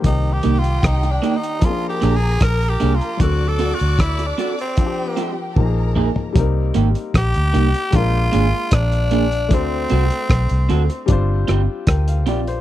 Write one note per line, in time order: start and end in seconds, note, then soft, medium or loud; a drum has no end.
0.02 0.39 C2 medium
0.02 1.58 D#3 medium
0.02 1.59 A#3 medium
0.02 0.34 D#4 medium
0.02 1.59 G4 medium
0.02 1.59 G5 loud
0.02 kick loud
0.02 closed hi-hat medium
0.06 1.60 C4 medium
0.06 1.61 G4 medium
0.32 0.60 G4 medium
0.43 0.79 C2 medium
0.43 0.56 A#3 medium
0.43 0.56 D#4 medium
0.43 0.57 G4 loud
0.43 closed hi-hat medium
0.59 0.87 F4 medium
0.64 closed hi-hat medium
0.83 1.18 C2 medium
0.83 1.13 D#4 medium
0.83 kick loud
0.83 cross-stick loud
0.83 closed hi-hat medium
1.03 muted clean electric guitar stroke medium
1.03 closed hi-hat medium
1.11 1.39 D4 medium
1.22 1.35 A#3 medium
1.22 1.36 D#4 medium
1.22 1.36 G4 medium
1.22 closed hi-hat medium
1.37 1.66 D#4 medium
1.43 closed hi-hat medium
1.59 3.15 F3 medium
1.59 3.16 A#3 medium
1.59 3.17 A#4 medium
1.59 3.17 A#5 loud
1.59 kick loud
1.59 closed hi-hat medium
1.63 1.69 C4 soft
1.63 1.89 F4 loud
1.63 3.19 G#4 medium
1.70 3.20 D4 medium
1.89 2.17 G4 medium
2.01 2.37 A#1 loud
2.01 2.14 A#3 medium
2.01 2.15 D4 medium
2.01 2.15 G#4 medium
2.01 cross-stick medium
2.01 closed hi-hat medium
2.16 2.44 G#4 loud
2.41 2.76 A#1 medium
2.41 2.71 A#4 loud
2.41 kick loud
2.41 cross-stick loud
2.41 closed hi-hat loud
2.62 closed hi-hat medium
2.69 2.96 G4 loud
2.80 2.99 C2 medium
2.80 2.93 A#3 medium
2.80 2.93 D4 loud
2.80 2.94 G#4 loud
2.80 closed hi-hat medium
2.95 3.22 F4 medium
3.01 closed hi-hat soft
3.17 3.72 D2 loud
3.17 4.73 F#3 medium
3.17 4.74 C4 medium
3.17 3.49 F#4 medium
3.17 4.75 D5 medium
3.17 4.75 D6 medium
3.17 kick loud
3.17 closed hi-hat medium
3.21 4.75 D4 medium
3.21 4.76 A4 medium
3.48 3.75 A4 loud
3.59 3.72 C4 medium
3.59 3.72 F#4 medium
3.59 3.73 A4 medium
3.59 closed hi-hat medium
3.74 4.02 F#4 medium
3.80 4.32 D2 medium
3.80 closed hi-hat medium
3.99 4.28 E4 loud
3.99 kick loud
3.99 cross-stick loud
3.99 closed hi-hat medium
4.19 muted clean electric guitar stroke soft
4.19 closed hi-hat medium
4.27 4.59 D4 medium
4.38 4.51 C4 medium
4.38 4.51 F#4 medium
4.38 4.52 A4 loud
4.38 closed hi-hat medium
4.59 5.34 C4 medium
4.59 closed hi-hat soft
4.77 5.54 F3 medium
4.77 5.57 C4 medium
4.77 5.57 D4 medium
4.77 4.86 F4 medium
4.77 5.55 G4 medium
4.77 5.55 G5 medium
4.77 kick loud
4.77 closed hi-hat medium
4.86 5.57 G4 medium
5.17 5.30 C4 medium
5.17 5.30 F4 medium
5.17 5.30 G4 medium
5.17 closed hi-hat medium
5.56 6.09 A#1 loud
5.56 6.35 F3 medium
5.56 6.33 A#3 medium
5.56 6.36 D#4 medium
5.56 5.64 G4 medium
5.56 6.34 A#4 medium
5.56 6.34 A#5 medium
5.56 kick loud
5.56 high tom medium
5.65 6.40 G#4 medium
5.95 6.08 A#3 medium
5.95 6.09 D#4 medium
5.95 6.09 G#4 loud
5.95 mid tom medium
6.16 floor tom medium
6.33 6.71 C2 medium
6.33 7.89 G3 medium
6.33 7.89 A#3 medium
6.33 7.90 C4 medium
6.33 kick loud
6.33 closed hi-hat medium
6.37 7.91 D#4 medium
6.37 7.92 A#4 medium
6.74 6.93 G#1 loud
6.74 6.87 A#3 medium
6.74 6.88 D#4 medium
6.74 6.88 G4 loud
6.74 closed hi-hat medium
6.95 closed hi-hat medium
7.14 7.32 A#1 medium
7.14 7.97 G4 loud
7.14 kick loud
7.14 cross-stick loud
7.14 closed hi-hat medium
7.34 7.52 D2 medium
7.34 closed hi-hat medium
7.53 7.72 C2 loud
7.53 7.66 A#3 medium
7.53 7.67 D#4 medium
7.53 7.67 G4 medium
7.53 closed hi-hat medium
7.74 muted clean electric guitar stroke soft
7.74 closed hi-hat medium
7.91 8.28 A#1 loud
7.91 9.46 G#3 medium
7.91 9.47 A#3 medium
7.91 9.48 D4 medium
7.91 kick loud
7.91 closed hi-hat medium
7.95 9.49 F4 medium
7.95 8.75 F4 loud
7.95 9.50 A#4 medium
8.32 8.51 G#1 medium
8.32 8.45 A#3 medium
8.32 8.45 D4 medium
8.32 8.46 G#4 loud
8.32 closed hi-hat medium
8.71 9.52 A#1 loud
8.71 9.55 D4 loud
8.71 kick loud
8.71 cross-stick loud
8.71 closed hi-hat loud
8.92 closed hi-hat medium
9.11 9.24 A#3 medium
9.11 9.24 D4 medium
9.11 9.25 G#4 medium
9.11 closed hi-hat medium
9.32 closed hi-hat medium
9.49 9.86 D2 loud
9.49 11.04 A3 medium
9.49 11.05 C4 medium
9.49 11.06 D4 medium
9.49 kick loud
9.49 closed hi-hat medium
9.53 11.10 C4 loud
9.53 11.07 F#4 medium
9.53 11.07 C5 medium
9.90 10.09 C2 medium
9.90 10.03 C4 medium
9.90 10.03 F#4 medium
9.90 10.04 A4 medium
9.90 closed hi-hat medium
10.10 closed hi-hat medium
10.30 10.48 B1 loud
10.30 kick loud
10.30 cross-stick loud
10.30 closed hi-hat medium
10.49 10.68 C2 medium
10.49 closed hi-hat medium
10.69 10.87 D2 loud
10.69 10.82 C4 medium
10.69 10.82 F#4 loud
10.69 10.82 A4 loud
10.69 closed hi-hat medium
10.89 muted clean electric guitar stroke soft
10.89 closed hi-hat medium
11.06 11.44 G1 loud
11.06 12.61 G3 medium
11.06 12.61 C4 medium
11.06 12.61 D4 medium
11.06 kick loud
11.06 closed hi-hat medium
11.10 11.87 F4 medium
11.10 11.88 C5 loud
11.48 11.66 G1 medium
11.48 11.61 C4 loud
11.48 11.61 F4 medium
11.48 11.61 G4 medium
11.48 cross-stick medium
11.48 closed hi-hat medium
11.87 12.28 D2 loud
11.87 12.07 A#4 medium
11.87 12.07 G5 medium
11.87 kick loud
11.87 cross-stick loud
11.87 closed hi-hat loud
12.08 12.26 F5 medium
12.08 closed hi-hat medium
12.26 12.61 A#1 medium
12.26 12.39 C4 medium
12.26 12.40 F4 medium
12.26 12.47 F4 medium
12.26 12.40 G4 loud
12.26 12.46 D5 medium
12.26 closed hi-hat medium
12.47 12.61 C5 medium
12.47 closed hi-hat medium